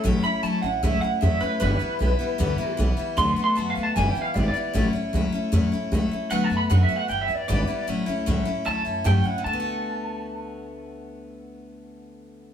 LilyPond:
<<
  \new Staff \with { instrumentName = "Clean electric guitar" } { \time 4/4 \key d \major \tempo 4 = 153 r8 b''8 a''8 fis''8 e''8 fis''8 e''8 b'8 | b'2. r4 | \tuplet 3/2 { c'''8 r8 c'''8 a''8 f''8 a''8 gis''8 g''8 f''8 d''8 d''4~ } | d''8 r2. r8 |
\tuplet 3/2 { fis''8 a''8 b''8 fis''8 e''8 fis''8 g''8 e''8 d''8 } d''4 | r2 a''4 g''8 fis''8 | a''1~ | a''1 | }
  \new Staff \with { instrumentName = "Steel-string acoustic guitar" } { \time 4/4 \key d \major <a, fis a cis' e'>8 <a cis' e'>8 <fis a cis' e'>8 <a cis' e'>8 <a, fis a cis' e'>8 <a cis' e'>8 <fis a cis' e'>8 <a cis' e'>8 | <g, d e g b e'>8 <e g b e'>8 <e g b e'>8 <e g b e'>8 <g, d e g b e'>8 <e g b e'>8 <e g b e'>8 <e g b e'>8 | <d fis a b fis'>8 <a b fis'>8 <fis a b fis'>8 <a b fis'>8 <g, d e g b e'>8 <e g b e'>8 <e g b e'>8 <e g b e'>8 | <a, fis a cis' e'>8 <a cis' e'>8 <fis a cis' e'>8 <a cis' e'>8 <a, fis a cis' e'>8 <a cis' e'>8 <fis a cis' e'>8 <a cis' e'>8 |
<d fis a b fis'>8 <a b fis'>8 <d fis a b fis'>8 <a b fis'>8 <e g b e'>8 <e g b e'>8 <g, d e g b e'>8 <e g b e'>8 | <a, fis a cis' e'>8 <a cis' e'>8 <a, fis a cis' e'>8 <a cis' e'>8 <fis a cis' e'>8 <a cis' e'>8 <a, fis a cis' e'>8 <a cis' e'>8 | <d a b fis'>1~ | <d a b fis'>1 | }
  \new Staff \with { instrumentName = "Upright bass" } { \clef bass \time 4/4 \key d \major a,,8 r8 cis,8 a,,8 cis,8 r8 e,8 r8 | g,,8 r8 b,,8 r8 d,8 r8 b,,8 r8 | d,8 r8 fis,8 d,8 g,,8 r8 gis,,8 r8 | a,,8 r8 cis,8 r8 e,8 r8 cis,8 r8 |
d,8 fis,8 fis,8 r8 g,,8 e,8 gis,,8 r8 | a,,8 cis,8 cis,8 r8 d,8 fis,8 g,8 r8 | d,1~ | d,1 | }
>>